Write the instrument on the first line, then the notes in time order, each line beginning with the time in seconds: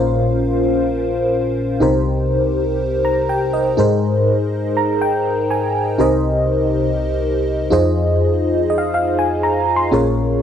fm electric piano
Already playing: A#1 A#2 C#4 F4 A#4 C5 F5
1.80 C2 C3 D#4 G4 A#4 C5
3.05 A#5
3.29 G5
3.53 D#5
3.77 G#2 D#4 G#4 A#4 C5
4.77 A#5
5.01 G5
5.50 G#5
5.98 C2 C3 D#4 G4 A#4 C5 D#5
7.70 F2 D#4 F4 G#4 C5 D#5
8.70 D#5
8.78 F5
8.94 F5
9.19 G#5
9.43 A#5
9.76 C6
9.92 A#1 A#2 C#4 F4 G#4 A#4 C#5